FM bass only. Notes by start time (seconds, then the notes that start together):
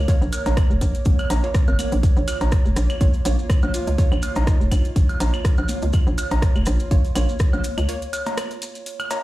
0.22 A#1
0.46 A#1
0.70 F1
0.81 A#1
1.06 A#1
1.30 A#1
1.68 G#1
1.92 A#1
2.17 A#1
2.41 A#1
2.65 F1
2.76 A#1
3.01 A#1
3.25 A#1
3.63 A#1
3.87 C#2
4.12 A#1
4.36 A#1
4.61 F1
4.72 A#1
4.96 A#1
5.20 A#1
5.58 A#1
5.83 C#2
6.07 A#1
6.31 A#1
6.56 F1
6.67 A#1
6.91 A#1
7.15 A#1
7.53 A#1
7.78 C#2